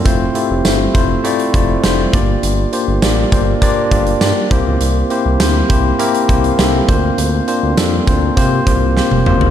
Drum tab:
HH |x-x-x-x-xxx-x-x-|x-x-x-x-x-xxx-x-|x-x-x-x-xxxxx-x-|x-x-x-x-x-x-----|
TB |----x-------x---|----x-------x---|----x-------x---|----x-----------|
SD |----o-------o---|----o-------o---|----o-------o---|----o-------o---|
T1 |----------------|----------------|----------------|-------------o--|
T2 |----------------|----------------|----------------|--------------o-|
FT |----------------|----------------|----------------|---------------o|
BD |o-----o---o---o-|------o-o-o---o-|------o---o---o-|------o-o-o-----|